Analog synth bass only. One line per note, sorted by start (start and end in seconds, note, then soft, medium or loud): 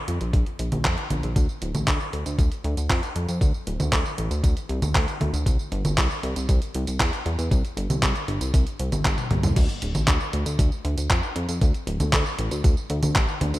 0.08 0.19 F2 loud
0.21 0.32 A#1 medium
0.33 0.45 A#1 loud
0.59 0.71 A#1 medium
0.72 0.83 A#1 medium
0.85 0.96 F2 loud
1.10 1.22 A#1 medium
1.23 1.35 A#1 medium
1.36 1.47 D2 loud
1.62 1.73 D1 loud
1.75 1.86 A1 medium
1.87 1.99 D2 loud
2.13 2.24 D2 medium
2.26 2.37 D2 medium
2.38 2.50 D2 loud
2.64 2.76 D2 loud
2.77 2.88 D2 medium
2.90 3.01 F2 loud
3.15 3.27 F2 medium
3.29 3.40 F2 medium
3.41 3.52 D2 loud
3.67 3.78 D1 medium
3.80 3.91 D2 medium
3.92 4.04 D2 loud
4.18 4.29 A1 loud
4.31 4.42 D2 medium
4.44 4.55 D2 loud
4.69 4.81 C2 loud
4.82 4.93 D2 medium
4.95 5.06 D2 loud
5.21 5.32 D2 medium
5.33 5.45 D2 medium
5.46 5.58 C2 loud
5.72 5.83 G1 loud
5.85 5.96 G1 medium
5.97 6.09 C2 loud
6.23 6.35 C2 loud
6.36 6.47 C2 medium
6.49 6.60 C2 loud
6.75 6.86 C2 loud
6.87 6.99 C2 medium
7.00 7.11 E2 loud
7.26 7.37 E2 medium
7.39 7.50 E2 medium
7.51 7.63 C2 loud
7.77 7.88 G1 loud
7.90 8.01 C2 medium
8.03 8.14 C2 loud
8.28 8.40 G1 loud
8.41 8.52 C2 medium
8.54 8.65 C2 loud
8.80 8.91 C2 loud
8.92 9.04 G1 medium
9.05 9.16 G1 loud
9.31 9.42 C2 medium
9.43 9.55 C2 medium
9.56 9.68 D2 loud
9.82 9.93 D1 loud
9.95 10.06 A1 medium
10.08 10.19 D2 loud
10.33 10.45 D2 loud
10.46 10.58 D2 medium
10.59 10.70 D2 loud
10.85 10.96 D2 loud
10.97 11.09 D2 medium
11.10 11.22 F2 loud
11.36 11.47 F2 medium
11.49 11.60 F2 medium
11.61 11.73 D2 loud
11.87 11.98 D1 loud
12.00 12.11 D2 medium
12.13 12.24 D2 loud
12.39 12.50 A1 medium
12.51 12.63 D2 medium
12.64 12.75 D2 loud
12.90 13.01 D2 loud
13.03 13.14 D2 medium
13.15 13.27 A1 loud
13.41 13.52 D2 medium
13.54 13.59 D2 medium